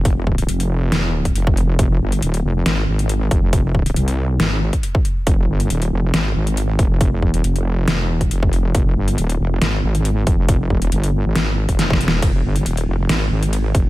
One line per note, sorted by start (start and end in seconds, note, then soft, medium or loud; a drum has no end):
0.00 0.47 F1 loud
0.05 kick loud
0.05 closed hi-hat medium
0.27 kick medium
0.38 closed hi-hat medium
0.49 1.34 F1 medium
0.49 closed hi-hat medium
0.60 closed hi-hat medium
0.92 snare loud
0.92 closed hi-hat medium
1.25 kick medium
1.25 closed hi-hat medium
1.35 1.77 F1 loud
1.35 closed hi-hat medium
1.47 kick loud
1.57 closed hi-hat medium
1.79 1.99 F1 loud
1.79 kick loud
1.79 closed hi-hat medium
2.01 2.21 G1 medium
2.12 closed hi-hat medium
2.22 2.43 D#1 medium
2.22 closed hi-hat medium
2.34 closed hi-hat medium
2.44 2.64 F1 loud
2.66 2.86 G#1 loud
2.66 snare loud
2.66 closed hi-hat medium
2.88 3.29 G#1 loud
2.99 closed hi-hat medium
3.09 closed hi-hat medium
3.31 3.95 F1 loud
3.31 kick loud
3.31 closed hi-hat medium
3.53 kick loud
3.53 closed hi-hat medium
3.75 kick medium
3.86 closed hi-hat medium
3.96 4.38 C2 medium
3.96 closed hi-hat medium
4.08 closed hi-hat medium
4.40 4.71 G#1 loud
4.40 snare loud
4.40 closed hi-hat medium
4.73 kick medium
4.73 closed hi-hat medium
4.83 closed hi-hat medium
4.95 kick loud
5.05 closed hi-hat medium
5.27 5.47 F1 medium
5.27 kick loud
5.27 closed hi-hat medium
5.49 5.69 G1 medium
5.60 closed hi-hat medium
5.70 5.90 D#1 medium
5.70 closed hi-hat medium
5.82 closed hi-hat medium
5.92 6.12 F1 loud
6.14 6.34 G#1 loud
6.14 snare loud
6.14 closed hi-hat medium
6.35 6.77 G#1 loud
6.47 closed hi-hat medium
6.57 closed hi-hat medium
6.79 7.24 F1 loud
6.79 kick loud
6.79 closed hi-hat medium
7.01 kick loud
7.01 closed hi-hat medium
7.22 7.43 E1 loud
7.22 kick medium
7.34 closed hi-hat medium
7.44 8.04 F1 loud
7.44 closed hi-hat medium
7.56 closed hi-hat soft
7.88 snare loud
7.88 closed hi-hat medium
8.04 8.30 E1 loud
8.21 kick medium
8.21 closed hi-hat medium
8.31 8.73 F1 loud
8.31 closed hi-hat medium
8.43 kick loud
8.53 closed hi-hat medium
8.75 8.95 F1 medium
8.75 kick loud
8.75 closed hi-hat medium
8.96 9.16 G1 loud
9.08 closed hi-hat medium
9.18 9.38 D#1 medium
9.18 closed hi-hat medium
9.30 closed hi-hat medium
9.40 9.60 F1 loud
9.62 9.82 G#1 loud
9.62 snare loud
9.62 closed hi-hat medium
9.83 10.25 G#1 loud
9.95 closed hi-hat medium
10.05 closed hi-hat medium
10.27 10.72 F1 loud
10.27 kick loud
10.27 closed hi-hat medium
10.49 kick loud
10.49 closed hi-hat medium
10.70 10.90 E1 loud
10.70 kick medium
10.82 closed hi-hat medium
10.92 11.23 G1 medium
10.92 closed hi-hat medium
11.04 closed hi-hat medium
11.25 11.67 G#1 medium
11.36 snare loud
11.36 closed hi-hat medium
11.69 12.21 F1 loud
11.69 kick medium
11.69 closed hi-hat medium
11.79 snare medium
11.79 closed hi-hat medium
11.90 kick loud
11.90 snare medium
12.01 closed hi-hat medium
12.08 snare loud
12.22 12.43 F1 loud
12.22 kick loud
12.22 closed hi-hat medium
12.22 ride medium
12.44 12.64 G1 medium
12.56 closed hi-hat medium
12.66 12.86 D#1 medium
12.66 closed hi-hat medium
12.66 ride soft
12.77 closed hi-hat medium
12.88 13.08 F1 loud
13.09 13.29 G#1 loud
13.09 snare loud
13.09 closed hi-hat medium
13.09 ride medium
13.31 13.73 G#1 loud
13.43 closed hi-hat medium
13.53 closed hi-hat medium
13.53 ride soft
13.75 13.89 F1 loud
13.75 kick loud
13.75 closed hi-hat medium